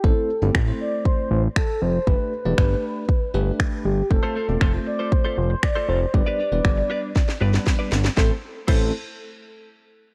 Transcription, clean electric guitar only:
\new Staff \with { instrumentName = "Clean electric guitar" } { \time 4/4 \key a \minor \tempo 4 = 118 r1 | r1 | r16 <a f' a' c''>16 <a f' a' c''>16 r16 <a f' a' c''>8 r16 <a f' a' c''>16 r16 <a f' a' c''>8 r8 <a f' a' c''>16 <a f' a' c''>16 r16 | r16 <d' g' b' d''>16 <d' g' b' d''>16 r8. <d' g' b' d''>8 r8 <d' g' b' d''>8 r16 <d' g' b' d''>8 r16 |
<c' e' a' c''>16 r8. <c' e' a' c''>16 r2 r8. | }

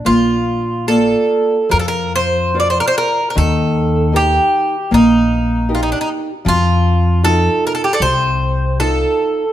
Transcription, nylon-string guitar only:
\new Staff \with { instrumentName = "Nylon-string guitar" } { \time 4/4 \key bes \major \tempo 4 = 76 bes4 <bes f' d''>4 f4 <f' bes' d''>4 | ees4 <ees' g' bes'>4 bes4 <ees' g' bes'>4 | f4 <ees' f' a'>4 c4 <ees' f' a'>4 | }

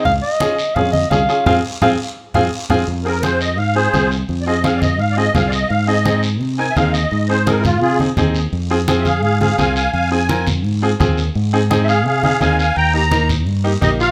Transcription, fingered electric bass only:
\new Staff \with { instrumentName = "Fingered electric bass" } { \clef bass \time 4/4 \key f \minor \tempo 4 = 170 des,8 r4. f,4 c,8 r8 | f,8 r8 f,8 r4 f,8 r8 f,8 | f,2 aes,4 c,4 | f,2 aes,4 c,4 |
aes,2 c4 ees,4 | aes,2 c4 ees,4 | f,2 aes,4 c,4 | f,2 aes,4 ees,4 |
aes,2 c4 ees,4 | ees,2 g,4 bes,,4 | }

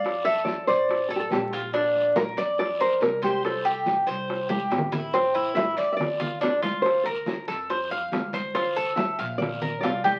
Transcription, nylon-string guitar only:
\new Staff \with { instrumentName = "Nylon-string guitar" } { \time 4/4 \key d \minor \tempo 4 = 141 f''8 e''8 d''8 c''4 a'32 g'32 a'16 g'8. r16 | r4 bes'8 d''8 d''8 c''8 bes'8 g'8 | a'4 r2. | c''4 \tuplet 3/2 { e''4~ e''16 e''16 } d''2 |
c''8 bes'4. r2 | c''4 e''4 d''4 d''4 | }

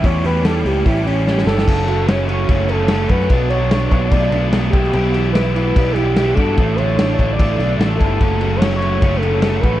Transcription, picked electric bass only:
\new Staff \with { instrumentName = "Picked electric bass" } { \clef bass \time 4/4 \key fis \phrygian \tempo 4 = 147 e,8 e,4 cis,8 a,,4. g,,8 | fis,,2 fis,,4. fis,8 | b,,4. b,,8 b,,8 b,,4 b,,8 | b,,2 b,,4. g,8 |
a,,4. a,,8 a,,8 b,,8 a,,8 g,,8 | fis,,2 fis,,4. a,,8 | }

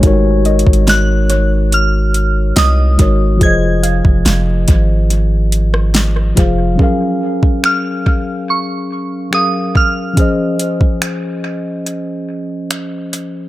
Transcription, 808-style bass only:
\new Staff \with { instrumentName = "808-style bass" } { \clef bass \time 4/4 \key ges \lydian \tempo 4 = 71 aes,,8. aes,,2~ aes,,16 c,8 aes,,8 | f,,8. f,,16 f,,8 aes,,2 f,,8 | r1 | r1 | }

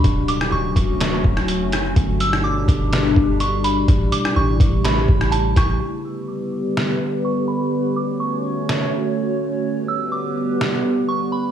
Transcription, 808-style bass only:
\new Staff \with { instrumentName = "808-style bass" } { \clef bass \time 4/4 \key g \lydian \tempo 4 = 125 d,,4 d,,8 d,,4 d,,8. fis,,8. | g,,4. g,,4 g,,4. | a,,8 r8 a,,8 a,,4 a,,4 a,,8 | r1 |
r1 | r1 | }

